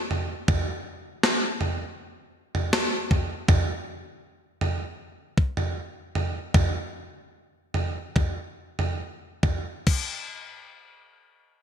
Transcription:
0, 0, Header, 1, 2, 480
1, 0, Start_track
1, 0, Tempo, 750000
1, 309, Time_signature, 4, 2, 24, 8
1, 2709, Tempo, 769231
1, 4149, Tempo, 818554
1, 5589, Tempo, 877193
1, 7027, End_track
2, 0, Start_track
2, 0, Title_t, "Drums"
2, 69, Note_on_c, 9, 43, 51
2, 133, Note_off_c, 9, 43, 0
2, 308, Note_on_c, 9, 43, 91
2, 309, Note_on_c, 9, 36, 84
2, 372, Note_off_c, 9, 43, 0
2, 373, Note_off_c, 9, 36, 0
2, 790, Note_on_c, 9, 38, 90
2, 854, Note_off_c, 9, 38, 0
2, 1028, Note_on_c, 9, 43, 55
2, 1092, Note_off_c, 9, 43, 0
2, 1630, Note_on_c, 9, 43, 49
2, 1694, Note_off_c, 9, 43, 0
2, 1747, Note_on_c, 9, 38, 95
2, 1811, Note_off_c, 9, 38, 0
2, 1989, Note_on_c, 9, 43, 54
2, 1990, Note_on_c, 9, 36, 68
2, 2053, Note_off_c, 9, 43, 0
2, 2054, Note_off_c, 9, 36, 0
2, 2230, Note_on_c, 9, 36, 81
2, 2232, Note_on_c, 9, 43, 97
2, 2294, Note_off_c, 9, 36, 0
2, 2296, Note_off_c, 9, 43, 0
2, 2946, Note_on_c, 9, 43, 53
2, 3009, Note_off_c, 9, 43, 0
2, 3422, Note_on_c, 9, 36, 74
2, 3484, Note_off_c, 9, 36, 0
2, 3544, Note_on_c, 9, 43, 48
2, 3607, Note_off_c, 9, 43, 0
2, 3908, Note_on_c, 9, 43, 49
2, 3970, Note_off_c, 9, 43, 0
2, 4151, Note_on_c, 9, 36, 80
2, 4151, Note_on_c, 9, 43, 84
2, 4210, Note_off_c, 9, 36, 0
2, 4210, Note_off_c, 9, 43, 0
2, 4854, Note_on_c, 9, 43, 52
2, 4912, Note_off_c, 9, 43, 0
2, 5097, Note_on_c, 9, 43, 49
2, 5099, Note_on_c, 9, 36, 67
2, 5155, Note_off_c, 9, 43, 0
2, 5158, Note_off_c, 9, 36, 0
2, 5467, Note_on_c, 9, 43, 52
2, 5526, Note_off_c, 9, 43, 0
2, 5827, Note_on_c, 9, 36, 58
2, 5827, Note_on_c, 9, 43, 54
2, 5881, Note_off_c, 9, 43, 0
2, 5882, Note_off_c, 9, 36, 0
2, 6065, Note_on_c, 9, 49, 62
2, 6066, Note_on_c, 9, 36, 76
2, 6120, Note_off_c, 9, 49, 0
2, 6121, Note_off_c, 9, 36, 0
2, 7027, End_track
0, 0, End_of_file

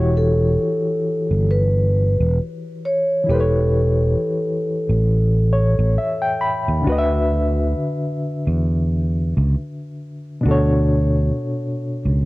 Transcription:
0, 0, Header, 1, 4, 480
1, 0, Start_track
1, 0, Tempo, 895522
1, 1760, Time_signature, 4, 2, 24, 8
1, 6567, End_track
2, 0, Start_track
2, 0, Title_t, "Vibraphone"
2, 0, Program_c, 0, 11
2, 92, Note_on_c, 0, 69, 86
2, 808, Note_on_c, 0, 71, 101
2, 827, Note_off_c, 0, 69, 0
2, 1263, Note_off_c, 0, 71, 0
2, 1529, Note_on_c, 0, 73, 100
2, 1770, Note_on_c, 0, 69, 90
2, 1772, Note_off_c, 0, 73, 0
2, 3184, Note_off_c, 0, 69, 0
2, 6567, End_track
3, 0, Start_track
3, 0, Title_t, "Reed electric piano"
3, 0, Program_c, 1, 4
3, 0, Control_c, 1, 64, 127
3, 0, Note_on_c, 1, 52, 76
3, 0, Note_on_c, 1, 64, 62
3, 0, Note_on_c, 1, 66, 70
3, 0, Note_on_c, 1, 67, 66
3, 0, Note_on_c, 1, 73, 88
3, 1730, Note_off_c, 1, 52, 0
3, 1735, Note_on_c, 1, 52, 62
3, 1737, Note_off_c, 1, 64, 0
3, 1743, Note_off_c, 1, 66, 0
3, 1750, Note_off_c, 1, 67, 0
3, 1750, Note_on_c, 1, 64, 58
3, 1757, Note_off_c, 1, 73, 0
3, 1763, Note_on_c, 1, 67, 63
3, 1767, Control_c, 1, 64, 0
3, 1777, Note_on_c, 1, 71, 64
3, 1789, Note_on_c, 1, 72, 58
3, 1815, Note_off_c, 1, 72, 0
3, 1825, Note_on_c, 1, 73, 72
3, 1849, Control_c, 1, 64, 127
3, 2957, Note_off_c, 1, 73, 0
3, 2963, Note_on_c, 1, 73, 69
3, 3185, Note_off_c, 1, 73, 0
3, 3205, Note_on_c, 1, 76, 64
3, 3331, Note_off_c, 1, 76, 0
3, 3333, Note_on_c, 1, 79, 76
3, 3430, Note_off_c, 1, 79, 0
3, 3436, Note_on_c, 1, 83, 74
3, 3646, Note_off_c, 1, 52, 0
3, 3654, Note_off_c, 1, 64, 0
3, 3655, Note_on_c, 1, 50, 76
3, 3660, Note_off_c, 1, 67, 0
3, 3661, Note_off_c, 1, 83, 0
3, 3667, Note_off_c, 1, 71, 0
3, 3669, Note_on_c, 1, 62, 70
3, 3682, Note_on_c, 1, 66, 66
3, 3687, Control_c, 1, 64, 0
3, 3696, Note_on_c, 1, 71, 72
3, 3709, Note_on_c, 1, 75, 69
3, 3735, Note_off_c, 1, 75, 0
3, 3744, Note_on_c, 1, 76, 94
3, 3780, Control_c, 1, 64, 127
3, 5566, Note_off_c, 1, 50, 0
3, 5573, Note_off_c, 1, 62, 0
3, 5579, Note_on_c, 1, 47, 86
3, 5580, Note_off_c, 1, 66, 0
3, 5586, Note_off_c, 1, 71, 0
3, 5591, Note_on_c, 1, 62, 74
3, 5605, Note_on_c, 1, 66, 68
3, 5607, Control_c, 1, 64, 0
3, 5611, Note_off_c, 1, 76, 0
3, 5619, Note_on_c, 1, 69, 64
3, 5633, Note_on_c, 1, 73, 80
3, 5703, Control_c, 1, 64, 127
3, 6567, Note_off_c, 1, 47, 0
3, 6567, Note_off_c, 1, 62, 0
3, 6567, Note_off_c, 1, 66, 0
3, 6567, Note_off_c, 1, 69, 0
3, 6567, Note_off_c, 1, 73, 0
3, 6567, End_track
4, 0, Start_track
4, 0, Title_t, "Fretless electric bass"
4, 0, Program_c, 2, 35
4, 0, Note_on_c, 2, 28, 89
4, 301, Note_off_c, 2, 28, 0
4, 702, Note_on_c, 2, 31, 88
4, 1159, Note_off_c, 2, 31, 0
4, 1181, Note_on_c, 2, 28, 87
4, 1274, Note_off_c, 2, 28, 0
4, 1764, Note_on_c, 2, 28, 93
4, 2221, Note_off_c, 2, 28, 0
4, 2623, Note_on_c, 2, 33, 81
4, 3079, Note_off_c, 2, 33, 0
4, 3102, Note_on_c, 2, 33, 94
4, 3195, Note_off_c, 2, 33, 0
4, 3582, Note_on_c, 2, 39, 83
4, 3674, Note_off_c, 2, 39, 0
4, 3683, Note_on_c, 2, 38, 112
4, 4140, Note_off_c, 2, 38, 0
4, 4541, Note_on_c, 2, 40, 88
4, 4998, Note_off_c, 2, 40, 0
4, 5022, Note_on_c, 2, 37, 91
4, 5114, Note_off_c, 2, 37, 0
4, 5604, Note_on_c, 2, 38, 98
4, 6061, Note_off_c, 2, 38, 0
4, 6461, Note_on_c, 2, 37, 73
4, 6567, Note_off_c, 2, 37, 0
4, 6567, End_track
0, 0, End_of_file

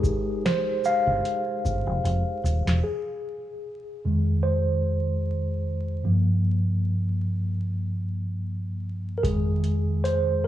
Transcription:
0, 0, Header, 1, 4, 480
1, 0, Start_track
1, 0, Tempo, 800000
1, 1699, Time_signature, 4, 2, 24, 8
1, 6284, End_track
2, 0, Start_track
2, 0, Title_t, "Tine electric piano"
2, 0, Program_c, 0, 4
2, 0, Control_c, 0, 64, 127
2, 0, Note_on_c, 0, 56, 50
2, 0, Note_on_c, 0, 63, 57
2, 0, Note_on_c, 0, 67, 54
2, 0, Note_on_c, 0, 68, 84
2, 274, Note_on_c, 0, 72, 102
2, 278, Note_off_c, 0, 68, 0
2, 379, Note_off_c, 0, 72, 0
2, 480, Note_off_c, 0, 67, 0
2, 482, Note_off_c, 0, 56, 0
2, 483, Note_off_c, 0, 63, 0
2, 514, Note_on_c, 0, 77, 98
2, 1442, Note_off_c, 0, 77, 0
2, 1703, Note_on_c, 0, 68, 69
2, 1707, Control_c, 0, 64, 0
2, 1816, Control_c, 0, 64, 127
2, 2429, Note_on_c, 0, 41, 51
2, 2430, Note_on_c, 0, 51, 46
2, 2436, Note_on_c, 0, 56, 49
2, 2658, Note_on_c, 0, 72, 75
2, 2690, Note_off_c, 0, 68, 0
2, 2755, Note_off_c, 0, 41, 0
2, 2756, Note_off_c, 0, 51, 0
2, 2759, Note_off_c, 0, 56, 0
2, 3354, Note_off_c, 0, 72, 0
2, 3622, Note_on_c, 0, 43, 51
2, 3626, Control_c, 0, 64, 0
2, 3628, Note_on_c, 0, 53, 45
2, 3631, Note_on_c, 0, 58, 53
2, 3735, Control_c, 0, 64, 127
2, 3952, Note_off_c, 0, 43, 0
2, 3955, Note_off_c, 0, 53, 0
2, 3956, Note_off_c, 0, 58, 0
2, 5506, Note_on_c, 0, 70, 62
2, 5540, Note_on_c, 0, 68, 85
2, 5541, Note_off_c, 0, 70, 0
2, 5547, Control_c, 0, 64, 0
2, 5547, Note_on_c, 0, 41, 52
2, 5551, Note_on_c, 0, 51, 49
2, 5554, Note_on_c, 0, 56, 55
2, 5658, Control_c, 0, 64, 127
2, 6024, Note_on_c, 0, 72, 98
2, 6034, Note_off_c, 0, 68, 0
2, 6264, Note_off_c, 0, 41, 0
2, 6268, Note_off_c, 0, 51, 0
2, 6269, Note_off_c, 0, 72, 0
2, 6270, Note_off_c, 0, 56, 0
2, 6284, End_track
3, 0, Start_track
3, 0, Title_t, "Fingered electric bass"
3, 0, Program_c, 1, 33
3, 640, Note_on_c, 1, 31, 88
3, 724, Note_off_c, 1, 31, 0
3, 990, Note_on_c, 1, 31, 83
3, 1097, Note_off_c, 1, 31, 0
3, 1118, Note_on_c, 1, 29, 80
3, 1203, Note_off_c, 1, 29, 0
3, 1222, Note_on_c, 1, 29, 82
3, 1333, Note_off_c, 1, 29, 0
3, 1461, Note_on_c, 1, 27, 86
3, 1572, Note_off_c, 1, 27, 0
3, 1598, Note_on_c, 1, 28, 74
3, 1683, Note_off_c, 1, 28, 0
3, 6284, End_track
4, 0, Start_track
4, 0, Title_t, "Drums"
4, 20, Note_on_c, 9, 36, 108
4, 26, Note_on_c, 9, 82, 51
4, 80, Note_off_c, 9, 36, 0
4, 86, Note_off_c, 9, 82, 0
4, 274, Note_on_c, 9, 42, 48
4, 275, Note_on_c, 9, 38, 104
4, 334, Note_off_c, 9, 42, 0
4, 335, Note_off_c, 9, 38, 0
4, 507, Note_on_c, 9, 82, 47
4, 567, Note_off_c, 9, 82, 0
4, 751, Note_on_c, 9, 42, 59
4, 811, Note_off_c, 9, 42, 0
4, 990, Note_on_c, 9, 36, 84
4, 994, Note_on_c, 9, 82, 40
4, 1050, Note_off_c, 9, 36, 0
4, 1054, Note_off_c, 9, 82, 0
4, 1232, Note_on_c, 9, 42, 62
4, 1292, Note_off_c, 9, 42, 0
4, 1475, Note_on_c, 9, 42, 45
4, 1475, Note_on_c, 9, 82, 45
4, 1535, Note_off_c, 9, 42, 0
4, 1535, Note_off_c, 9, 82, 0
4, 1604, Note_on_c, 9, 38, 84
4, 1664, Note_off_c, 9, 38, 0
4, 5541, Note_on_c, 9, 36, 103
4, 5548, Note_on_c, 9, 42, 80
4, 5601, Note_off_c, 9, 36, 0
4, 5608, Note_off_c, 9, 42, 0
4, 5782, Note_on_c, 9, 42, 46
4, 5842, Note_off_c, 9, 42, 0
4, 6031, Note_on_c, 9, 42, 43
4, 6091, Note_off_c, 9, 42, 0
4, 6284, End_track
0, 0, End_of_file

